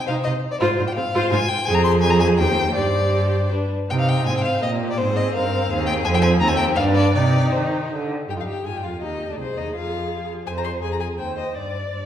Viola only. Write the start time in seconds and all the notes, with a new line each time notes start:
0.08 D#4
0.24 D#4
0.60 F4
0.78 F4
0.97 C4
1.13 F4
1.32 F4
1.67 G#4
2.03 G#4
2.39 G4
2.75 G4
3.52 D4
3.90 D#4
4.28 C4
4.63 A#3
4.99 C4
6.06 C4
6.43 C4
6.78 D4
7.16 D#4
8.30 D#4
8.66 F4
9.03 G4
9.40 G#4
10.47 C5
10.83 G#4
11.18 C5
11.55 D5